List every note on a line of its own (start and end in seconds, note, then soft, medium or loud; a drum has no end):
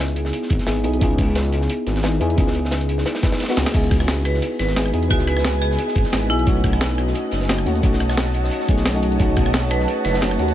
0.00 0.32 C#2 loud
0.00 0.65 B3 medium
0.00 0.65 D#4 medium
0.00 0.66 E4 medium
0.00 0.66 G#4 loud
0.08 closed hi-hat soft
0.16 closed hi-hat medium
0.25 snare soft
0.33 closed hi-hat medium
0.42 snare soft
0.50 0.59 G#1 medium
0.50 kick loud
0.50 closed hi-hat medium
0.59 snare soft
0.59 closed hi-hat soft
0.66 0.86 G#1 medium
0.66 0.82 B3 medium
0.66 0.82 D#4 medium
0.66 0.83 E4 medium
0.66 0.83 G#4 medium
0.66 snare loud
0.66 closed hi-hat medium
0.76 closed hi-hat soft
0.83 1.00 B1 medium
0.83 0.98 B3 medium
0.83 0.99 D#4 medium
0.83 1.00 E4 medium
0.83 1.00 G#4 loud
0.83 closed hi-hat medium
0.93 closed hi-hat soft
0.99 1.68 C#2 loud
0.99 2.01 B3 medium
0.99 2.01 D#4 medium
0.99 2.02 E4 medium
0.99 2.03 G#4 loud
0.99 kick loud
0.99 closed hi-hat medium
1.11 closed hi-hat soft
1.18 kick loud
1.18 closed hi-hat medium
1.18 open hi-hat medium
1.35 snare loud
1.35 closed hi-hat medium
1.45 closed hi-hat soft
1.52 closed hi-hat medium
1.61 snare soft
1.70 closed hi-hat medium
1.87 2.19 G#1 medium
1.87 snare soft
1.87 closed hi-hat medium
1.96 snare soft
1.96 closed hi-hat soft
2.03 2.18 B3 medium
2.03 2.19 D#4 medium
2.03 2.19 E4 medium
2.03 2.19 G#4 medium
2.03 snare loud
2.03 closed hi-hat medium
2.20 2.36 E2 loud
2.20 2.35 B3 medium
2.20 2.36 D#4 medium
2.20 2.36 E4 medium
2.20 2.36 G#4 loud
2.20 closed hi-hat medium
2.30 closed hi-hat soft
2.36 3.05 C#2 medium
2.36 3.20 B3 medium
2.36 3.21 D#4 medium
2.36 3.22 E4 medium
2.36 3.22 G#4 loud
2.36 kick loud
2.36 closed hi-hat medium
2.47 snare medium
2.55 closed hi-hat medium
2.65 snare soft
2.71 snare loud
2.71 closed hi-hat medium
2.81 closed hi-hat soft
2.89 closed hi-hat medium
2.98 snare medium
3.06 snare loud
3.06 closed hi-hat medium
3.15 snare medium
3.15 closed hi-hat medium
3.22 3.46 B3 medium
3.22 3.47 D#4 medium
3.22 3.47 E4 medium
3.22 3.47 B4 medium
3.22 kick loud
3.22 snare medium
3.22 closed hi-hat medium
3.32 snare loud
3.32 closed hi-hat medium
3.32 closed hi-hat soft
3.39 snare medium
3.39 closed hi-hat medium
3.44 snare medium
3.44 closed hi-hat medium
3.48 3.71 B3 medium
3.48 3.72 D#4 medium
3.48 3.72 E4 medium
3.48 3.73 F#4 loud
3.48 snare medium
3.48 closed hi-hat medium
3.56 3.65 C#2 loud
3.56 snare medium
3.56 snare loud
3.56 closed hi-hat medium
3.66 snare loud
3.66 snare medium
3.66 closed hi-hat medium
3.66 closed hi-hat soft
3.72 4.41 C#2 medium
3.72 4.74 B3 medium
3.72 4.74 D#4 medium
3.72 4.75 E4 medium
3.72 4.75 G#4 loud
3.72 6.44 B4 medium
3.72 10.54 D#5 medium
3.72 6.44 G#5 medium
3.72 kick loud
3.72 closed hi-hat medium
3.72 closed hi-hat loud
3.72 crash medium
3.83 closed hi-hat soft
3.91 kick loud
3.91 cross-stick soft
3.91 closed hi-hat medium
3.91 open hi-hat medium
4.00 cross-stick medium
4.08 snare loud
4.08 closed hi-hat medium
4.17 closed hi-hat soft
4.25 4.52 B4 medium
4.25 cross-stick soft
4.25 closed hi-hat medium
4.34 snare soft
4.42 closed hi-hat medium
4.59 4.92 G#1 medium
4.59 4.80 B4 medium
4.59 snare soft
4.59 closed hi-hat medium
4.68 snare medium
4.68 closed hi-hat soft
4.75 4.91 B3 medium
4.75 4.91 D#4 medium
4.75 4.92 E4 medium
4.75 4.92 G#4 medium
4.75 snare loud
4.75 closed hi-hat medium
4.86 cross-stick soft
4.92 5.09 E2 loud
4.92 5.07 B3 medium
4.92 5.08 D#4 medium
4.92 5.09 E4 medium
4.92 5.09 G#4 loud
4.92 closed hi-hat medium
5.03 closed hi-hat soft
5.08 5.77 C#2 loud
5.08 6.10 B3 medium
5.08 6.11 D#4 medium
5.08 6.11 E4 medium
5.08 5.26 F#4 medium
5.08 6.12 G#4 loud
5.08 kick loud
5.08 closed hi-hat medium
5.08 closed hi-hat loud
5.19 snare medium
5.27 5.54 B4 medium
5.27 cross-stick soft
5.27 closed hi-hat medium
5.37 cross-stick medium
5.37 snare soft
5.45 snare loud
5.45 closed hi-hat medium
5.54 closed hi-hat soft
5.61 5.82 G#4 medium
5.61 closed hi-hat medium
5.71 snare soft
5.78 closed hi-hat medium
5.88 snare soft
5.96 6.04 G#1 medium
5.96 kick loud
5.96 closed hi-hat medium
6.05 snare soft
6.05 closed hi-hat soft
6.12 6.31 G#1 medium
6.12 6.28 B3 medium
6.12 6.28 D#4 medium
6.12 6.28 E4 medium
6.12 6.28 G#4 medium
6.12 snare loud
6.12 closed hi-hat medium
6.22 closed hi-hat soft
6.29 6.45 B1 medium
6.29 6.45 B3 medium
6.29 6.45 D#4 medium
6.29 6.51 E4 medium
6.29 6.45 E4 medium
6.29 6.45 G#4 loud
6.29 closed hi-hat medium
6.39 closed hi-hat soft
6.45 7.14 B1 loud
6.45 7.46 A3 medium
6.45 7.47 C#4 medium
6.45 7.48 D#4 medium
6.45 7.48 F#4 loud
6.45 10.54 C#5 medium
6.45 10.54 F#5 medium
6.45 10.54 A5 medium
6.45 kick loud
6.45 closed hi-hat medium
6.57 closed hi-hat soft
6.64 kick loud
6.64 cross-stick soft
6.64 closed hi-hat medium
6.64 open hi-hat medium
6.73 cross-stick medium
6.81 snare loud
6.81 closed hi-hat medium
6.90 closed hi-hat soft
6.98 cross-stick soft
6.98 closed hi-hat medium
7.07 snare soft
7.15 closed hi-hat medium
7.31 7.65 F#1 medium
7.31 snare soft
7.31 closed hi-hat medium
7.41 snare medium
7.41 closed hi-hat soft
7.48 7.64 A3 medium
7.48 7.64 C#4 medium
7.48 7.64 D#4 medium
7.48 7.65 F#4 medium
7.48 snare loud
7.48 closed hi-hat medium
7.58 cross-stick soft
7.65 7.82 D#2 loud
7.65 7.80 A3 medium
7.65 7.81 C#4 medium
7.65 7.81 D#4 medium
7.65 7.82 F#4 loud
7.65 closed hi-hat medium
7.76 closed hi-hat soft
7.81 8.50 B1 loud
7.81 8.66 A3 medium
7.81 8.66 C#4 medium
7.81 8.67 D#4 medium
7.81 8.68 F#4 loud
7.81 kick loud
7.81 closed hi-hat medium
7.93 snare soft
7.99 cross-stick soft
7.99 closed hi-hat medium
8.09 cross-stick medium
8.09 snare medium
8.17 snare loud
8.17 closed hi-hat medium
8.27 closed hi-hat soft
8.34 closed hi-hat medium
8.44 snare medium
8.51 closed hi-hat medium
8.60 snare soft
8.67 9.18 B1 medium
8.67 8.92 A3 medium
8.67 8.92 C#4 medium
8.67 8.93 D#4 medium
8.67 8.93 G#4 medium
8.67 kick loud
8.67 closed hi-hat medium
8.77 snare soft
8.77 closed hi-hat soft
8.86 snare loud
8.86 closed hi-hat medium
8.94 9.16 A3 medium
8.94 9.18 C#4 medium
8.94 9.18 D#4 medium
8.94 9.18 F#4 loud
8.94 closed hi-hat soft
9.03 closed hi-hat medium
9.12 closed hi-hat soft
9.18 9.87 B1 medium
9.18 10.19 A3 medium
9.18 10.20 C#4 medium
9.18 10.20 D#4 medium
9.18 10.21 F#4 loud
9.18 kick loud
9.18 closed hi-hat medium
9.29 closed hi-hat soft
9.36 kick loud
9.36 cross-stick soft
9.36 closed hi-hat medium
9.36 open hi-hat medium
9.46 cross-stick medium
9.53 snare loud
9.53 closed hi-hat medium
9.63 closed hi-hat soft
9.70 9.97 B4 medium
9.70 cross-stick soft
9.70 closed hi-hat medium
9.80 snare soft
9.88 closed hi-hat medium
10.04 10.38 F#1 medium
10.04 10.26 B4 medium
10.04 snare soft
10.04 closed hi-hat medium
10.14 snare medium
10.14 closed hi-hat soft
10.21 10.37 A3 medium
10.21 10.37 C#4 medium
10.21 10.37 D#4 medium
10.21 10.38 F#4 medium
10.21 snare loud
10.21 closed hi-hat medium
10.31 cross-stick soft
10.38 10.54 D#2 loud
10.38 10.53 A3 medium
10.38 10.54 C#4 medium
10.38 10.54 D#4 medium
10.38 10.54 F#4 loud
10.38 closed hi-hat medium
10.48 closed hi-hat soft